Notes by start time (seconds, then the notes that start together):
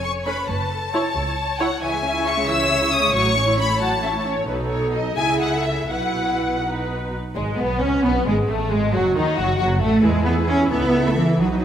Already playing: F1 F2 C#5
0.03 C#6
0.26 C#4 B4 B5
0.48 F#1 F#2 B4 A5
0.72 A4
0.93 E4 C#5
1.16 C#2
1.60 E4 C#5 F#5
1.81 C#2 C#3 E3 C#5 E5 G#5
1.93 G#3
2.04 C#4
2.15 E4
2.26 C#4 C#6
2.37 G#3
2.49 E3 E6
2.60 G#3
2.70 C#4
2.81 E4
2.93 C#4 D#6
3.03 G#3
3.14 A1 A2 F#3 C#5 C#6
3.26 A3
3.36 C#4
3.48 E4
3.59 C#4 B5
3.70 A3
3.80 F#3 F#5 A5
3.92 A3
4.03 C#4 E5
4.14 E4
4.25 C#4 C#5
4.36 A3
4.47 B1 B2 D#4 A4 B4
4.69 C#5
4.93 D#5
5.16 C#2 C#3 E4 G#4 E5 G#5
5.41 F#5
5.53 A4
5.66 E5
5.90 B1 B2 E4 B4 F#5
6.63 D#4 B4
7.35 G#1 G#3
7.58 B1 B3
7.81 C#2 C#4
8.04 B1 B3
8.26 G#1 G#3
8.48 A1 A3
8.70 G#1 G#3
8.93 F#1 F#3 F#4
9.15 D#2 D#3 D#4
9.37 F#1 F#3 F#4
9.59 F#1 F#3 F#4
9.81 A1 A3
10.03 E2 G#3 E4 G#4 B4
10.26 B3
10.48 C#4
10.70 C#2 B3 A4 E5
11.07 A3
11.17 E3
11.41 B1 F#3 D#4 F#4 B4